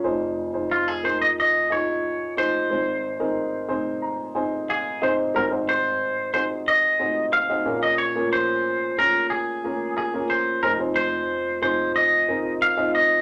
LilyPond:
<<
  \new Staff \with { instrumentName = "Clean electric guitar" } { \time 4/4 \key aes \mixolydian \tempo 4 = 91 r4 f'16 aes'16 c''16 ees''16 ees''8 des''4 c''8~ | c''2~ c''8 r8 aes'8 c''8 | bes'8 c''4 c''8 ees''4 f''8. ees''16 | des''8 c''4 bes'8 aes'4 aes'8 c''8 |
bes'8 c''4 c''8 ees''4 f''8 ees''8 | }
  \new Staff \with { instrumentName = "Upright piano" } { \time 4/4 \key aes \mixolydian << { r1 | r4. c'''8 bes''8 aes''8 f''8 ees''8 | r1 | r1 |
r1 | } \\ { <ees' f' aes' c''>8 r16 <ees' f' aes' c''>8 r16 <ees' f' aes' bes'>8. r16 <ees' f' aes' ees''>8. r16 <ees' f' aes' c''>8 | <c' ees' aes' c''>8 r16 <c' ees' aes' bes'>8 r16 <c' ees' aes' c''>8. r16 <c' ees' aes' c''>8. r16 <c' ees' aes' c''>8 | <c' ees' ges' aes' c''>16 <c' ees' ges' aes' c''>4 r16 <c' ees' ges' aes' c''>8. r16 <c' ees' ges' aes' c''>8 r16 <c' ees' ges' aes' ees''>16 <bes des' f' aes' bes'>8 | r16 <bes des' f' aes' bes'>4 r16 <bes des' f' aes' bes'>8. r16 <bes des' f' aes' bes'>8 r16 <bes des' f' aes' bes'>8 r16 |
<c' ees' f' aes' c''>16 <c' ees' f' aes' c''>4 r16 <c' ees' f' aes' c''>8. r16 <c' ees' f' aes' bes'>8 r16 <c' ees' f' aes' ees''>8 r16 | } >> }
  \new Staff \with { instrumentName = "Upright piano" } { \clef bass \time 4/4 \key aes \mixolydian <f,, f,>1 | <aes,, aes,>1 | <aes,, aes,>2.~ <aes,, aes,>8 <bes,, bes,>8~ | <bes,, bes,>2.~ <bes,, bes,>8 r8 |
<f,, f,>1 | }
>>